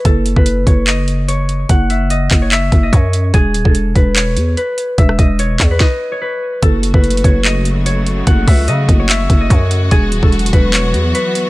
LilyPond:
<<
  \new Staff \with { instrumentName = "Harp" } { \time 4/4 \key fis \dorian \tempo 4 = 146 a'8. b'8. cis''8 dis''4 cis''8 r8 | fis''8 e''8 dis''8. cis''16 e''8. dis''16 cis''4 | gis'8. a'8. b'8 cis''4 b'8 r8 | e''8 dis''8 cis''8. b'16 dis''8. cis''16 b'4 |
a'8. b'8. cis''8 dis''4 cis''8 r8 | fis''8 e''8 dis''8. cis''16 e''8. dis''16 cis''4 | gis'8. a'8. b'8 cis''4 b'8 r8 | }
  \new Staff \with { instrumentName = "String section" } { \clef bass \time 4/4 \key fis \dorian << { r1 | r1 | r1 | r1 |
fis'1~ | fis'1~ | fis'1 | } \\ { r1 | r1 | r1 | r1 |
<cis fis a>1~ | <cis fis a>1 | <e fis b>1 | } >> }
  \new Staff \with { instrumentName = "808-style bass" } { \clef bass \time 4/4 \key fis \dorian fis,,8. fis,,8. fis,,2~ fis,,8 | fis,,4. fis,,4 fis,,8 fis,4 | e,,8 dis,,16 e,,8. e,,4 e,8 r4 | e,,8 e,,4 e,8 r2 |
fis,,8. fis,,8. fis,,2~ fis,,8 | fis,,8 cis,8 cis8 fis,,4 fis,,8 fis,4 | e,,8 dis,,16 e,,8. e,,4 e,8 r4 | }
  \new DrumStaff \with { instrumentName = "Drums" } \drummode { \time 4/4 <hh bd>8 hh16 bd16 hh8 <hh bd>8 <hc hh>8 hh8 hh8 hh8 | <hh bd>8 hh8 hh8 <hc hh bd>8 <hc hh>8 <hh bd>8 <hh bd>8 hh8 | <hh bd>8 hh16 bd16 hh8 <hh bd>8 <hc hh>8 hh8 hh8 hh8 | <hh bd>16 ss16 <hh bd>8 hh8 <hc hh bd>8 <bd sn>4 r4 |
<hh bd>8 hh16 bd16 \tuplet 3/2 { hh16 hh16 hh16 <hh bd>16 r16 r16 } <hc hh>8 hh8 hh8 hh8 | <hh bd>8 <hho bd>8 hh8 <hh bd>8 <hc hh>8 <hh bd>8 <hh bd>8 hh8 | <hh bd>8 hh16 bd16 \tuplet 3/2 { hh16 hh16 hh16 <hh bd>16 r16 r16 } <hc hh>8 hh8 hh8 hh8 | }
>>